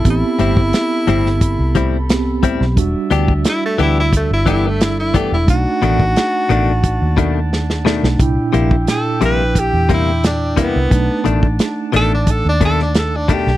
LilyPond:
<<
  \new Staff \with { instrumentName = "Horn section" } { \time 4/4 \key b \phrygian \tempo 4 = 88 << { b''1 | e''1 | <fis'' a''>1 | <e'' g''>1 |
<fis'' a''>1 | } \\ { a'1 | d''1~ | d''1 | g'1 |
d''1 | } >> }
  \new Staff \with { instrumentName = "Tenor saxophone" } { \time 4/4 \key b \phrygian e'2. r4 | r4 e'16 a16 e'16 e'16 a16 e'16 e'16 a16 e'16 e'16 a16 e'16 | fis'2. r4 | r4 a'8 b'8 g'8 e'8 d'8 b8~ |
b8 r4 a'16 d'16 a'16 d'16 a'16 d'16 a'16 d'16 g'8 | }
  \new Staff \with { instrumentName = "Tine electric piano" } { \time 4/4 \key b \phrygian <b c' g'>2. <b c' g'>4 | <g d' fis'>2~ <g d' fis'>8 <g d' a'>4. | <a d' dis'>2.~ <a d' dis'>8 <a d' dis'>8 | <bes, d' e'>2.~ <bes, d' e'>8 <d' e' bes'>8 |
<a d' dis'>1 | }
  \new Staff \with { instrumentName = "Clean electric guitar" } { \time 4/4 \key b \phrygian r8 <a, g c' e'>8 r8 <a, g c' e'>8 r8 <a, g c' e'>8 r8 <a, g c' e'>8 | r8 <e b d' g'>8 r8 <e b d' g'>8 r8 <e b d' g'>8 r8 <e b d' g'>8 | r8 <b, dis a d'>8 r8 <b, dis a d'>8 r8 <b, dis a d'>8 r8 <b, dis a d'>8 | r8 <c g bes e'>8 r8 <c g bes e'>8 r8 <c g bes e'>8 r8 <c g bes e'>8 |
r8 <b, dis a d'>8 r8 <b, dis a d'>8 r8 <b, dis a d'>8 r8 <b, dis a d'>8 | }
  \new Staff \with { instrumentName = "Fingered electric bass" } { \clef bass \time 4/4 \key b \phrygian a,,16 r16 g,,8 r8 g,,8. c,4. b,,16 | e,,16 r16 d,8 r8 d,8. g,,4. e,,16 | b,,16 r16 a,,8 r8 a,,8. dis,4. b,,16 | c,16 r16 bes,,8 r8 bes,,8. e,4. c,16 |
b,,16 r16 a,,8 r8 a,,8. dis,4. b,,16 | }
  \new DrumStaff \with { instrumentName = "Drums" } \drummode { \time 4/4 <hh bd>8 hh16 bd16 <hh sn>8 hh16 sn16 <hh bd>8 <hh bd>8 <hh sn>8 <hh bd>16 sn16 | <hh bd>8 hh16 bd16 <hh sn>8 hh8 <hh bd>8 <hh bd>8 <hh sn>8 <hh bd>8 | <hh bd>8 hh16 bd16 <hh sn>8 hh8 <hh bd>8 <hh bd>8 sn16 sn16 sn16 sn16 | <hh bd>8 hh16 bd16 <hh sn>8 hh8 <hh bd>8 <hh bd>8 <hh sn>8 <hh bd>8 |
<hh bd>8 hh16 bd16 <hh sn>8 hh8 <hh bd>8 <hh bd>16 sn16 <hh sn>8 <hh bd>16 sn16 | }
>>